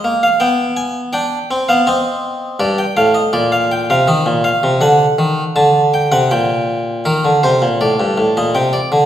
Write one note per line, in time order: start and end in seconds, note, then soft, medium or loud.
0.04 0.27 A#3 medium
0.23 0.41 F5 medium
0.40 1.12 B3 medium
0.40 0.63 G5 medium
0.77 1.00 G#5 medium
1.13 1.36 D4 medium
1.13 1.67 G5 medium
1.51 1.69 C4 medium
1.69 1.87 B3 medium
1.69 1.87 F5 medium
1.87 2.59 C4 medium
1.87 2.59 D#5 medium
2.60 2.83 G2 medium
2.60 2.78 D5 medium
2.78 2.97 G5 medium
2.97 3.20 A2 medium
2.97 3.15 F5 medium
3.14 3.33 D#5 medium
3.33 3.88 A#2 medium
3.33 3.52 D5 medium
3.52 3.71 F5 medium
3.71 3.90 G5 medium
3.90 4.08 C3 medium
3.90 4.08 F5 medium
4.08 4.26 D#3 medium
4.08 4.31 D#5 medium
4.26 4.49 A#2 medium
4.44 4.68 F5 medium
4.63 4.82 C3 medium
4.81 5.04 D3 medium
4.81 5.54 F#5 medium
5.19 5.42 D#3 medium
5.56 6.11 D3 medium
5.56 5.80 A5 medium
5.94 6.12 G5 medium
6.12 6.31 C3 medium
6.12 6.30 F#5 medium
6.31 7.04 A#2 medium
6.31 7.04 G5 medium
7.05 7.24 D#3 medium
7.05 7.29 A#4 medium
7.25 7.43 D3 soft
7.43 7.62 C3 medium
7.43 7.66 C5 medium
7.62 7.80 A#2 medium
7.81 7.99 A2 medium
7.81 8.35 D5 medium
8.00 8.17 G2 medium
8.18 8.36 A2 medium
8.37 8.55 A#2 medium
8.37 8.55 D#5 medium
8.55 8.78 C3 medium
8.55 8.73 G5 medium
8.73 8.96 D5 medium
8.92 9.06 D3 medium